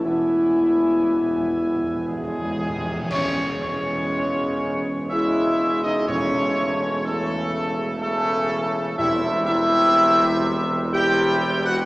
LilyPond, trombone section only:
\new Staff \with { instrumentName = "Trombone section" } { \clef bass \time 3/4 \key cis \minor \tempo 4 = 62 <e b>2~ <e b>8 r8 | <cis gis>2 <cis gis>4 | <cis a>4 <cis a>4 <cis a>4 | <c g>2 <c g>4 | }